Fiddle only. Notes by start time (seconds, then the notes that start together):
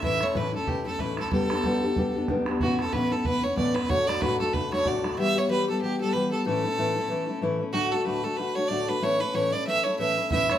0.03 E5
0.23 C#5
0.37 B4
0.55 A4
0.68 G4
0.86 A4
1.00 B4
1.19 A4
1.32 A4
2.61 F#4
2.80 A4
2.93 B4
3.12 A4
3.25 B4
3.44 C#5
3.57 D5
3.75 B4
3.89 C#5
4.07 D5
4.21 B4
4.40 A4
4.54 B4
4.73 C#5
4.87 D5
5.19 E5
5.38 C#5
5.51 B4
5.69 A4
5.81 G4
6.00 A4
6.13 B4
6.31 A4
6.46 A4
7.73 F#4
7.92 A4
8.01 A4 B4
8.24 A4
8.37 B4
8.55 C#5
8.68 D5
8.88 B4
9.03 C#5
9.21 B4
9.35 C#5
9.52 D5
9.67 E5
9.84 C#5
9.99 E5
10.31 E5
10.51 C#5